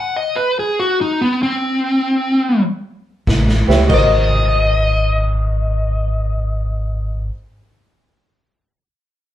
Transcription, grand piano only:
3.67 3.79 G4 medium
3.67 3.79 B4 medium
3.67 3.79 C#5 medium
3.67 3.80 E5 medium
3.87 7.27 F#4 medium
3.87 7.29 A#4 medium
3.92 7.31 C5 medium
3.92 7.34 D#5 medium

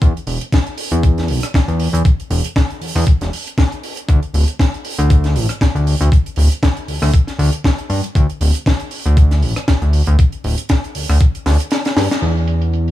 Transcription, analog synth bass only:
0.02 0.13 E2 loud
0.27 0.39 E1 medium
0.92 1.30 E2 loud
1.28 1.40 B1 medium
1.68 1.89 E2 medium
1.93 2.03 E2 loud
2.30 2.42 E1 medium
2.81 2.93 E2 soft
2.95 3.05 E2 loud
3.21 3.30 E1 medium
4.08 4.20 D2 loud
4.34 4.45 D1 medium
4.99 5.37 D2 loud
5.35 5.47 A1 medium
5.75 5.95 D2 medium
6.00 6.10 D2 loud
6.37 6.49 D1 medium
6.88 6.99 D2 soft
7.02 7.11 D2 loud
7.39 7.50 D2 loud
7.90 8.01 G2 medium
8.15 8.27 D2 loud
8.41 8.52 D1 medium
9.06 9.44 D2 loud
9.42 9.54 A1 loud
9.82 10.02 D2 medium
10.07 10.17 D2 loud
10.44 10.56 D1 medium
10.95 11.07 D2 soft
11.09 11.19 D2 loud
11.46 11.57 D2 loud
11.97 12.08 G2 medium
12.22 12.91 E2 medium

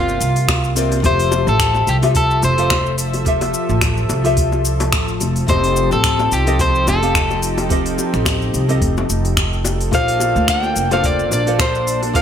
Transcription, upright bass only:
0.00 0.17 G1 medium
0.21 1.00 C2 medium
1.04 1.43 F1 loud
1.47 1.84 A1 loud
1.87 2.44 C2 medium
2.43 3.50 F1 medium
3.69 4.06 A1 loud
4.09 4.93 C2 medium
4.93 5.16 A1 medium
5.21 5.44 F1 medium
5.49 5.87 F1 loud
5.92 6.28 A1 loud
6.32 6.89 C2 medium
6.87 7.95 F1 medium
8.14 8.50 A1 loud
8.54 8.81 C2 medium
8.82 9.05 F1 loud
9.10 9.89 F1 medium
9.93 10.32 A#1 medium
10.36 10.73 D2 loud
10.76 11.32 F1 medium
11.32 12.22 A#1 medium

